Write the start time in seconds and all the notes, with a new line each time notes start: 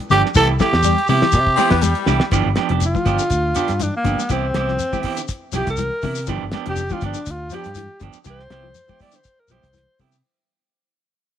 0.00 closed hi-hat
0.10 G1 D3 F3 D4 G4, muted clean electric guitar stroke, snare, closed hi-hat, high conga, low conga, shekere
0.26 snare
0.35 C2 E3 B3 E4 G4 A4, kick, closed hi-hat, shekere
0.59 E3 A3 E4 G4, muted clean electric guitar stroke, kick, snare, closed hi-hat, high conga, shekere
0.73 E2, snare, closed hi-hat
0.83 G3, closed hi-hat, shekere
0.98 closed hi-hat
1.08 C3 B3 E4 G4, open hi-hat, high conga, low conga, shekere
1.22 E3, muted fingered electric bass stroke, snare
1.32 C3, kick, closed hi-hat, shekere
1.47 kick
1.56 E3 B3 C4 E4 G4, muted clean electric guitar stroke, snare, closed hi-hat, high conga, shekere
1.70 E2 E3 B3, kick, snare, closed hi-hat
1.82 G3, closed hi-hat, high conga, shekere
1.95 closed hi-hat
2.06 C2 D3 E3 B3 E4 G4, snare, high conga, low conga, shekere
2.20 snare
2.31 G1 E3 F3 B3 D4 G4, kick, closed hi-hat, shekere
2.46 G1
2.56 F3 B3 D4 G4, snare, closed hi-hat, high conga
2.69 F1 F3 B3 D4 G4, closed hi-hat
2.80 closed hi-hat, high conga, shekere
2.86 F4
2.94 E3, kick, high conga, shekere
3.05 G1 F3 B3 D4 G4, kick, closed hi-hat, high conga, low conga, shekere
3.19 D3, shekere
3.30 D2, kick, closed hi-hat, high conga, shekere
3.54 D3 B3 D4 G4, muted clean electric guitar stroke, closed hi-hat, shekere
3.68 G2, snare, closed hi-hat, shekere
3.79 E3 D4, closed hi-hat, high conga, shekere
3.97 A#3
4.04 G1 D3 F3 B3 D4 G4, kick, closed hi-hat, high conga, low conga, shekere
4.18 high conga, shekere
4.29 C2 E3 B3 C4 E4 G4, kick, closed hi-hat, shekere
4.54 C2 E3 B3 E4 G4, snare, closed hi-hat, high conga, low conga
4.68 F3, snare
4.79 closed hi-hat, high conga, low conga, shekere
4.92 E3 B3 E4 G4, kick, high conga, shekere
5.03 E3 B3 E4 G4, kick, open hi-hat, low conga, shekere
5.16 D3, closed hi-hat, shekere
5.28 kick, closed hi-hat, high conga, shekere
5.52 B1 E3 F3 B3 E4 G4, snare, closed hi-hat, shekere
5.67 C2 A#4, kick, snare, closed hi-hat, shekere
5.77 E3, closed hi-hat, high conga, shekere
6.02 C3 D3 E3 B3 E4, muted clean electric guitar stroke, kick, open hi-hat, high conga, low conga, shekere
6.15 shekere
6.27 G1 E3 F3 B3 D4 G4, kick, closed hi-hat, high conga, shekere
6.43 G1
6.51 F3 B3 D4 G4, snare, closed hi-hat, high conga
6.65 F1 F3 B3 D4 G4, closed hi-hat
6.69 G4
6.76 closed hi-hat, high conga, low conga, shekere
6.89 E3 B3 D4 G4, kick, high conga, shekere
6.93 F4
7.01 G1 F3 B3 D4 G4, kick, closed hi-hat, high conga, low conga, shekere
7.05 D4
7.14 D3, shekere
7.26 D2, kick, closed hi-hat, shekere
7.31 F4
7.50 F3 B3 D4 G4, closed hi-hat, shekere
7.55 G4
7.64 G2, closed hi-hat, shekere
7.75 E3, closed hi-hat, high conga, shekere
8.00 G1 D3 F3 B3 D4 G4, kick, closed hi-hat, high conga, low conga, shekere
8.13 shekere
8.24 C2 E3 G3 E4 G4, muted clean electric guitar stroke, kick, closed hi-hat, high conga, shekere
8.30 C5
8.39 snare
8.50 C2 G3 B3 E4 G4, snare, closed hi-hat, high conga, low conga
8.63 F3
8.75 closed hi-hat, high conga, low conga, shekere
8.88 E3 B3 E4 G4, kick, high conga, shekere
8.99 G3 B3 E4 G4 D5, kick, open hi-hat, high conga, low conga, shekere
9.12 D3, closed hi-hat, shekere
9.16 C5
9.24 kick, closed hi-hat, high conga, shekere
9.40 A#4
9.48 B1 F3 G3 B3 E4 G4 C5, closed hi-hat, shekere
9.63 C2, kick, closed hi-hat, shekere
9.73 E3, snare, closed hi-hat, high conga, shekere
9.99 C3 D3 G3 B3 E4 G4, kick, open hi-hat, high conga, low conga, shekere
10.12 shekere